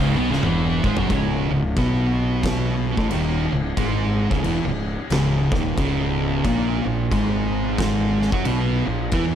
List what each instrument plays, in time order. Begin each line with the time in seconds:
Already playing: fingered electric bass C#1
0.00 distorted electric guitar C#2 C#3
0.17 fingered electric bass B1, distorted electric guitar B2 B3
0.30 fingered electric bass C#1, distorted electric guitar C#2 C#3, snare
0.43 fingered electric bass E1, distorted electric guitar E2 E3, high tom
0.84 fingered electric bass G#1, distorted electric guitar G#2 G#3, kick
0.97 fingered electric bass F#1, distorted electric guitar F#2 F#3, floor tom
1.09 fingered electric bass C#1, distorted electric guitar C#2 C#3, kick, crash
1.50 fingered electric bass C#1, distorted electric guitar C#2
1.77 fingered electric bass B1, distorted electric guitar B2 B3, kick, crash
2.43 kick, snare, crash
2.97 fingered electric bass A1, distorted electric guitar A2 A3, kick
3.10 fingered electric bass D#1, distorted electric guitar D#2 D#3, crash
3.52 fingered electric bass C#1, distorted electric guitar C#2
3.77 fingered electric bass G#1, distorted electric guitar G#2 G#3, kick, crash
4.31 fingered electric bass C#1, distorted electric guitar C#2 C#3, kick
4.44 fingered electric bass E1, distorted electric guitar E2 E3, crash
4.64 fingered electric bass C#1, distorted electric guitar C#2
5.10 fingered electric bass C#1, distorted electric guitar C#2 C#3, snare, crash
5.52 fingered electric bass D#1, distorted electric guitar D#2 D#3, kick, snare
5.77 fingered electric bass C#1, distorted electric guitar C#2 C#3, kick, crash
6.45 fingered electric bass A#1, distorted electric guitar A#2 A#3, kick, crash
6.85 fingered electric bass A#1, distorted electric guitar A#2
7.11 fingered electric bass G#1, distorted electric guitar G#2 G#3, kick, crash
7.78 kick, snare, crash
8.22 snare
8.32 fingered electric bass F#2, distorted electric guitar F#3 F#4, kick
8.45 fingered electric bass B1, distorted electric guitar B2 B3, crash
8.86 fingered electric bass A#1, distorted electric guitar A#2
9.12 fingered electric bass E2, distorted electric guitar E3 E4, kick, crash